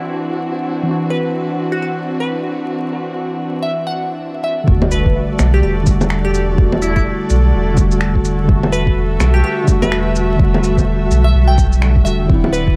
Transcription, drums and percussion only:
4.68 kick loud
4.82 low bongo medium
4.91 cabasa medium
4.91 shaker medium
5.06 kick medium
5.39 finger snap loud
5.39 low bongo medium
5.39 cabasa medium
5.39 shaker medium
5.87 kick loud
5.87 cabasa medium
5.87 shaker medium
6.01 low bongo medium
6.01 shaker soft
6.10 finger snap loud
6.35 cabasa medium
6.35 shaker medium
6.58 kick loud
6.72 low bongo medium
6.82 cabasa medium
6.82 shaker medium
6.96 kick medium
7.30 cabasa medium
7.30 shaker medium
7.77 kick loud
7.77 cabasa medium
7.77 shaker medium
7.92 shaker soft
8.01 finger snap loud
8.16 kick medium
8.25 cabasa medium
8.25 shaker medium
8.49 kick loud
8.63 low bongo medium
8.73 cabasa medium
8.73 shaker medium
8.87 kick medium
9.20 finger snap loud
9.20 low bongo medium
9.20 cabasa medium
9.20 shaker medium
9.68 kick loud
9.68 cabasa medium
9.68 shaker medium
9.83 low bongo medium
9.83 shaker soft
9.92 finger snap loud
10.16 cabasa medium
10.16 shaker medium
10.39 kick loud
10.54 low bongo medium
10.64 cabasa medium
10.64 shaker medium
10.78 kick medium
10.78 low bongo soft
10.78 shaker soft
11.11 cabasa medium
11.11 shaker medium
11.58 kick loud
11.58 cabasa medium
11.58 shaker medium
11.73 shaker soft
11.82 finger snap loud
11.96 kick medium
12.06 cabasa medium
12.06 shaker medium
12.29 kick loud
12.44 low bongo medium
12.54 cabasa medium
12.54 shaker medium
12.68 kick medium

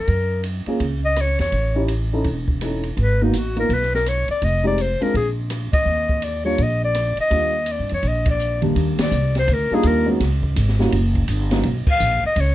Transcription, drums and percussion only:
0.07 kick soft
0.07 ride soft
0.43 hi-hat pedal soft
0.43 ride soft
0.66 ride soft
0.80 kick soft
0.80 ride soft
1.16 cross-stick medium
1.16 hi-hat pedal medium
1.16 ride medium
1.39 snare soft
1.39 ride soft
1.52 kick soft
1.52 ride soft
1.88 hi-hat pedal soft
1.88 ride medium
2.24 kick soft
2.24 ride soft
2.48 kick soft
2.61 cross-stick medium
2.61 hi-hat pedal soft
2.61 ride medium
2.83 ride soft
2.97 kick soft
2.97 ride soft
3.33 hi-hat pedal medium
3.33 ride medium
3.56 ride soft
3.70 kick soft
3.70 ride medium
3.82 snare soft
3.95 snare soft
4.06 cross-stick medium
4.06 hi-hat pedal medium
4.06 ride soft
4.28 ride soft
4.42 kick soft
4.42 ride soft
4.78 hi-hat pedal medium
4.78 ride soft
5.01 ride soft
5.14 kick soft
5.14 ride soft
5.50 cross-stick medium
5.50 hi-hat pedal soft
5.50 ride medium
5.73 kick medium
5.73 ride medium
6.09 kick soft
6.22 hi-hat pedal soft
6.22 ride medium
6.58 kick soft
6.58 ride soft
6.95 cross-stick medium
6.95 hi-hat pedal soft
6.95 ride medium
7.17 ride soft
7.31 kick soft
7.31 ride soft
7.66 hi-hat pedal soft
7.66 ride medium
7.89 ride soft
8.03 kick soft
8.03 ride soft
8.26 kick medium
8.26 ride medium
8.39 hi-hat pedal medium
8.62 ride soft
8.76 kick soft
8.76 ride medium
8.99 snare medium
8.99 ride medium
9.11 hi-hat pedal medium
9.35 snare soft
9.35 ride soft
9.48 kick soft
9.48 ride medium
9.83 kick soft
9.83 hi-hat pedal medium
9.83 ride medium
10.20 kick soft
10.20 snare soft
10.20 ride medium
10.43 kick medium
10.56 kick soft
10.56 hi-hat pedal medium
10.56 ride medium
10.68 snare soft
10.80 snare soft
10.92 kick soft
10.92 ride medium
11.15 kick soft
11.15 ride soft
11.28 kick soft
11.28 hi-hat pedal medium
11.28 ride medium
11.51 snare medium
11.51 ride soft
11.63 kick soft
11.63 ride medium
11.87 kick medium
11.87 crash medium
11.99 hi-hat pedal medium
12.36 kick soft
12.36 ride medium

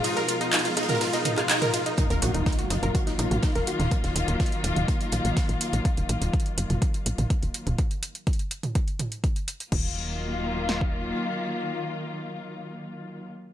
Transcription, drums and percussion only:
0.04 closed hi-hat medium
0.04 ride medium
0.17 cross-stick medium
0.17 snare medium
0.17 closed hi-hat medium
0.29 closed hi-hat loud
0.29 closed hi-hat medium
0.41 cross-stick medium
0.41 closed hi-hat soft
0.52 snare loud
0.52 clap loud
0.52 closed hi-hat medium
0.52 closed hi-hat soft
0.52 ride medium
0.59 closed hi-hat medium
0.65 closed hi-hat soft
0.77 cross-stick medium
0.77 snare medium
0.77 closed hi-hat loud
0.77 closed hi-hat medium
0.83 snare medium
0.83 closed hi-hat medium
0.89 snare medium
0.89 closed hi-hat medium
0.89 closed hi-hat soft
0.89 mid tom medium
0.95 snare loud
0.95 closed hi-hat medium
1.01 cross-stick medium
1.01 snare loud
1.01 closed hi-hat medium
1.01 ride medium
1.13 snare loud
1.13 closed hi-hat soft
1.13 closed hi-hat medium
1.25 closed hi-hat medium
1.25 closed hi-hat loud
1.25 mid tom medium
1.38 cross-stick medium
1.38 clap soft
1.38 closed hi-hat soft
1.49 snare loud
1.49 clap loud
1.49 closed hi-hat medium
1.49 ride medium
1.62 cross-stick soft
1.62 closed hi-hat soft
1.62 mid tom medium
1.74 snare soft
1.74 closed hi-hat medium
1.74 closed hi-hat loud
1.86 closed hi-hat soft
1.98 kick loud
1.98 closed hi-hat medium
2.10 closed hi-hat soft
2.22 closed hi-hat loud
2.22 closed hi-hat medium
2.34 closed hi-hat soft
2.46 kick loud
2.46 snare loud
2.46 closed hi-hat soft
2.46 closed hi-hat medium
2.52 closed hi-hat medium
2.59 closed hi-hat soft
2.70 snare soft
2.70 closed hi-hat loud
2.70 closed hi-hat medium
2.83 closed hi-hat soft
2.83 mid tom medium
2.95 kick loud
2.95 closed hi-hat medium
3.07 snare soft
3.07 closed hi-hat soft
3.19 closed hi-hat medium
3.19 closed hi-hat loud
3.31 closed hi-hat soft
3.31 mid tom medium
3.43 kick loud
3.43 snare loud
3.43 closed hi-hat medium
3.55 snare soft
3.55 closed hi-hat soft
3.67 closed hi-hat medium
3.67 closed hi-hat loud
3.80 snare soft
3.80 closed hi-hat soft
3.80 mid tom medium
3.91 kick loud
3.91 closed hi-hat medium
4.04 snare soft
4.04 closed hi-hat soft
4.16 closed hi-hat loud
4.16 closed hi-hat medium
4.28 closed hi-hat soft
4.40 kick loud
4.40 snare loud
4.40 closed hi-hat soft
4.40 closed hi-hat medium
4.46 closed hi-hat medium
4.52 closed hi-hat soft
4.64 closed hi-hat medium
4.64 closed hi-hat loud
4.76 closed hi-hat soft
4.76 mid tom medium
4.88 kick loud
4.88 closed hi-hat medium
5.01 closed hi-hat soft
5.12 closed hi-hat medium
5.12 closed hi-hat loud
5.25 closed hi-hat soft
5.37 kick loud
5.37 snare loud
5.37 closed hi-hat medium
5.49 closed hi-hat soft
5.61 closed hi-hat loud
5.61 closed hi-hat medium
5.73 closed hi-hat soft
5.85 kick loud
5.85 closed hi-hat medium
5.97 closed hi-hat soft
6.09 closed hi-hat loud
6.22 closed hi-hat soft
6.33 kick loud
6.33 closed hi-hat soft
6.40 closed hi-hat medium
6.46 closed hi-hat soft
6.58 closed hi-hat loud
6.70 closed hi-hat soft
6.70 mid tom medium
6.82 kick loud
6.82 closed hi-hat medium
6.94 closed hi-hat soft
7.06 closed hi-hat loud
7.18 closed hi-hat soft
7.18 mid tom medium
7.30 kick loud
7.30 closed hi-hat medium
7.43 closed hi-hat soft
7.54 closed hi-hat loud
7.67 closed hi-hat soft
7.67 mid tom medium
7.78 kick loud
7.78 closed hi-hat medium
7.91 closed hi-hat soft
8.03 closed hi-hat loud
8.15 closed hi-hat soft
8.27 kick loud
8.27 closed hi-hat soft
8.33 closed hi-hat soft
8.39 closed hi-hat soft
8.51 closed hi-hat medium
8.63 closed hi-hat soft
8.63 mid tom medium
8.75 kick loud
8.75 closed hi-hat medium
8.88 closed hi-hat soft
8.99 closed hi-hat loud
8.99 mid tom medium
9.12 closed hi-hat soft
9.24 kick loud
9.24 closed hi-hat medium
9.36 closed hi-hat soft
9.48 closed hi-hat loud
9.60 closed hi-hat soft
9.72 kick loud
9.72 crash medium
10.69 snare medium
10.81 kick medium

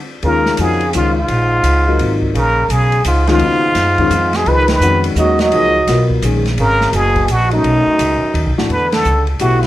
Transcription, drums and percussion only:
0.23 ride medium
0.46 snare soft
0.57 hi-hat pedal medium
0.57 ride medium
0.81 ride soft
0.93 hi-hat pedal medium
0.93 ride medium
1.28 ride medium
1.64 hi-hat pedal medium
1.64 ride medium
1.99 ride medium
2.22 kick soft
2.35 ride medium
2.70 hi-hat pedal medium
2.70 ride medium
2.92 ride soft
3.04 hi-hat pedal medium
3.04 ride medium
3.27 snare soft
3.27 ride soft
3.39 ride medium
3.75 snare soft
3.75 hi-hat pedal medium
3.75 ride medium
3.98 kick medium
3.98 ride soft
4.11 hi-hat pedal medium
4.11 ride medium
4.33 snare medium
4.33 ride soft
4.46 ride medium
4.68 snare medium
4.68 ride medium
4.81 hi-hat pedal medium
5.04 ride medium
5.16 hi-hat pedal medium
5.39 snare medium
5.39 ride soft
5.52 ride medium
5.87 snare soft
5.87 hi-hat pedal medium
5.87 ride medium
6.10 kick medium
6.22 hi-hat pedal medium
6.22 ride medium
6.46 snare soft
6.46 ride soft
6.58 ride medium
6.81 snare soft
6.93 hi-hat pedal medium
6.93 ride medium
7.16 kick medium
7.16 ride soft
7.28 hi-hat pedal medium
7.28 ride medium
7.51 ride soft
7.64 ride medium
7.99 hi-hat pedal medium
7.99 ride medium
8.35 ride medium
8.58 snare medium
8.70 ride soft
8.92 snare medium
8.92 ride medium
9.05 hi-hat pedal medium
9.27 ride soft
9.39 hi-hat pedal medium
9.39 ride medium
9.63 snare soft
9.63 ride soft

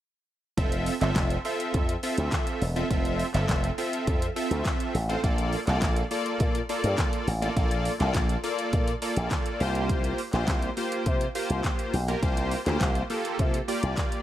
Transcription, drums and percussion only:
0.58 kick loud
0.58 closed hi-hat medium
0.72 closed hi-hat medium
0.86 open hi-hat medium
1.01 clap medium
1.01 closed hi-hat medium
1.16 kick loud
1.16 snare loud
1.16 clap loud
1.16 closed hi-hat medium
1.30 closed hi-hat soft
1.45 open hi-hat medium
1.60 closed hi-hat medium
1.74 kick loud
1.74 closed hi-hat medium
1.89 closed hi-hat medium
2.03 open hi-hat medium
2.18 closed hi-hat medium
2.32 kick loud
2.32 snare medium
2.32 clap loud
2.32 closed hi-hat medium
2.47 closed hi-hat medium
2.62 open hi-hat medium
2.76 closed hi-hat medium
2.91 kick loud
2.91 closed hi-hat medium
3.05 closed hi-hat medium
3.19 open hi-hat medium
3.34 clap medium
3.34 closed hi-hat medium
3.49 kick loud
3.49 snare loud
3.49 clap loud
3.49 closed hi-hat medium
3.64 closed hi-hat medium
3.78 open hi-hat medium
3.93 closed hi-hat medium
4.07 kick loud
4.07 closed hi-hat medium
4.22 closed hi-hat medium
4.36 open hi-hat medium
4.51 closed hi-hat medium
4.65 kick loud
4.65 snare medium
4.65 clap loud
4.65 closed hi-hat medium
4.80 closed hi-hat medium
4.95 open hi-hat medium
5.10 closed hi-hat soft
5.24 kick loud
5.24 closed hi-hat medium
5.38 closed hi-hat medium
5.53 open hi-hat medium
5.67 clap medium
5.67 closed hi-hat medium
5.82 kick loud
5.82 snare loud
5.82 clap loud
5.82 closed hi-hat medium
5.96 closed hi-hat medium
6.11 open hi-hat medium
6.26 closed hi-hat medium
6.40 kick loud
6.40 closed hi-hat medium
6.55 closed hi-hat medium
6.69 open hi-hat medium
6.84 closed hi-hat medium
6.98 kick loud
6.98 snare medium
6.98 clap loud
6.98 closed hi-hat medium
7.13 closed hi-hat medium
7.28 open hi-hat medium
7.42 closed hi-hat medium
7.57 kick loud
7.57 closed hi-hat medium
7.71 closed hi-hat medium
7.85 open hi-hat medium
8.00 clap medium
8.00 closed hi-hat medium
8.14 kick loud
8.14 snare medium
8.14 clap loud
8.14 closed hi-hat medium
8.29 closed hi-hat soft
8.44 open hi-hat medium
8.59 closed hi-hat medium
8.73 kick loud
8.73 closed hi-hat medium
8.88 closed hi-hat medium
9.02 open hi-hat medium
9.17 closed hi-hat medium
9.31 kick loud
9.31 snare medium
9.31 clap loud
9.31 closed hi-hat medium
9.46 closed hi-hat medium
9.60 open hi-hat medium
9.75 closed hi-hat soft
9.89 kick loud
9.89 closed hi-hat medium
10.04 closed hi-hat medium
10.18 open hi-hat medium
10.33 clap medium
10.33 closed hi-hat medium
10.48 kick loud
10.48 snare loud
10.48 clap loud
10.48 closed hi-hat medium
10.62 closed hi-hat medium
10.77 open hi-hat medium
10.92 closed hi-hat medium
11.06 kick loud
11.06 closed hi-hat medium
11.21 closed hi-hat medium
11.35 open hi-hat medium
11.50 closed hi-hat medium
11.64 kick loud
11.64 snare medium
11.64 clap loud
11.64 closed hi-hat medium
11.79 closed hi-hat medium
11.94 open hi-hat medium
12.08 closed hi-hat soft
12.23 kick loud
12.23 closed hi-hat medium
12.37 closed hi-hat medium
12.51 open hi-hat medium
12.66 clap medium
12.66 closed hi-hat medium
12.81 kick loud
12.81 snare loud
12.81 clap loud
12.81 closed hi-hat medium
12.95 closed hi-hat medium
13.10 open hi-hat medium
13.25 closed hi-hat medium
13.39 kick loud
13.39 closed hi-hat medium
13.54 closed hi-hat medium
13.68 open hi-hat medium
13.83 closed hi-hat medium
13.97 kick loud
13.97 snare medium
13.97 clap loud
13.97 closed hi-hat medium
14.12 closed hi-hat medium

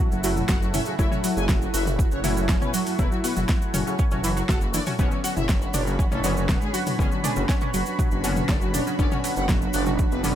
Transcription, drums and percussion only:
0.12 cabasa soft
0.24 open hi-hat loud
0.24 cabasa loud
0.37 mid tom medium
0.37 cabasa soft
0.48 kick loud
0.48 snare loud
0.48 cabasa medium
0.62 cabasa soft
0.74 open hi-hat loud
0.74 mid tom medium
0.74 cabasa loud
0.85 cabasa soft
0.99 kick loud
0.99 cabasa medium
1.12 mid tom medium
1.12 cabasa soft
1.24 open hi-hat loud
1.24 cabasa loud
1.37 cabasa soft
1.49 kick loud
1.49 snare loud
1.49 mid tom medium
1.49 cabasa medium
1.62 cabasa soft
1.74 open hi-hat loud
1.74 cabasa loud
1.86 mid tom medium
1.86 cabasa soft
1.99 kick loud
1.99 cabasa medium
2.11 cabasa soft
2.24 open hi-hat loud
2.24 mid tom medium
2.24 cabasa loud
2.37 cabasa soft
2.49 kick loud
2.49 snare loud
2.49 cabasa soft
2.62 mid tom medium
2.62 cabasa soft
2.74 open hi-hat loud
2.74 cabasa loud
2.87 open hi-hat medium
2.87 cabasa soft
2.99 kick loud
2.99 mid tom medium
2.99 cabasa medium
3.12 cabasa soft
3.24 open hi-hat loud
3.24 cabasa medium
3.36 mid tom medium
3.36 cabasa soft
3.48 kick loud
3.48 snare loud
3.48 cabasa soft
3.62 cabasa soft
3.74 open hi-hat loud
3.74 mid tom medium
3.74 cabasa medium
3.87 cabasa soft
3.99 kick loud
3.99 cabasa medium
4.11 mid tom medium
4.11 cabasa soft
4.24 open hi-hat loud
4.24 cabasa medium
4.37 cabasa soft
4.49 kick loud
4.49 snare loud
4.49 mid tom medium
4.49 cabasa medium
4.61 cabasa soft
4.74 open hi-hat loud
4.74 cabasa loud
4.86 open hi-hat medium
4.86 mid tom medium
4.86 cabasa soft
4.99 kick loud
4.99 mid tom medium
4.99 cabasa medium
5.11 cabasa soft
5.24 open hi-hat loud
5.24 cabasa medium
5.37 mid tom medium
5.37 cabasa soft
5.49 kick loud
5.49 snare loud
5.49 cabasa medium
5.62 cabasa soft
5.74 open hi-hat loud
5.74 mid tom medium
5.74 cabasa loud
5.87 cabasa soft
5.99 kick loud
5.99 cabasa soft
6.12 mid tom loud
6.12 cabasa soft
6.24 open hi-hat loud
6.24 cabasa medium
6.37 cabasa soft
6.49 kick loud
6.49 snare loud
6.49 mid tom loud
6.49 cabasa medium
6.62 cabasa soft
6.74 open hi-hat loud
6.74 cabasa medium
6.86 open hi-hat medium
6.86 mid tom medium
6.86 cabasa soft
6.99 kick loud
6.99 cabasa soft
7.12 cabasa soft
7.24 open hi-hat loud
7.24 mid tom loud
7.24 cabasa medium
7.36 cabasa soft
7.49 kick loud
7.49 snare loud
7.49 cabasa soft
7.61 mid tom loud
7.61 cabasa soft
7.74 open hi-hat loud
7.74 cabasa medium
7.86 cabasa soft
7.99 kick loud
7.99 mid tom medium
7.99 cabasa soft
8.11 cabasa soft
8.24 open hi-hat loud
8.24 cabasa medium
8.36 mid tom loud
8.36 cabasa soft
8.48 kick loud
8.48 snare loud
8.48 cabasa medium
8.61 cabasa soft
8.74 open hi-hat loud
8.74 mid tom loud
8.74 cabasa medium
8.87 cabasa soft
8.99 kick loud
8.99 cabasa soft
9.11 mid tom loud
9.11 cabasa soft
9.24 open hi-hat loud
9.24 cabasa medium
9.36 cabasa soft
9.49 kick loud
9.49 snare loud
9.49 mid tom loud
9.49 cabasa medium
9.62 cabasa soft
9.73 open hi-hat loud
9.73 cabasa medium
9.86 mid tom loud
9.86 cabasa soft
9.99 kick loud
9.99 cabasa soft
10.12 cabasa soft
10.24 open hi-hat loud
10.24 mid tom loud
10.24 cabasa medium

